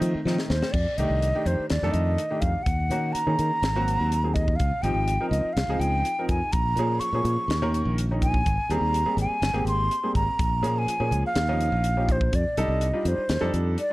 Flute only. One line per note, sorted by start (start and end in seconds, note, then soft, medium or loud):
0.49 0.73 C5 medium
0.72 0.99 D5 medium
0.97 1.48 D#5 medium
1.47 1.70 C5 medium
1.70 1.93 D5 medium
1.91 2.42 D#5 medium
2.41 2.64 F5 medium
2.63 3.14 F#5 medium
3.13 4.36 A#5 medium
4.34 4.57 D#5 medium
4.56 4.84 F5 medium
4.82 5.30 G5 medium
5.30 5.54 D#5 medium
5.53 5.82 F5 medium
5.80 6.29 G5 medium
6.29 6.54 G#5 medium
6.52 7.01 A#5 medium
7.00 7.94 C#6 medium
8.23 8.73 G#5 medium
8.72 9.19 A#5 medium
9.21 9.65 G#5 medium
9.68 10.12 C6 loud
10.16 10.80 A#5 medium
10.78 11.25 G#5 medium
11.26 12.13 F5 medium
12.12 12.37 C5 medium
12.35 12.60 D5 medium
12.58 13.10 D#5 medium
13.08 13.52 C5 medium
13.80 13.93 D5 medium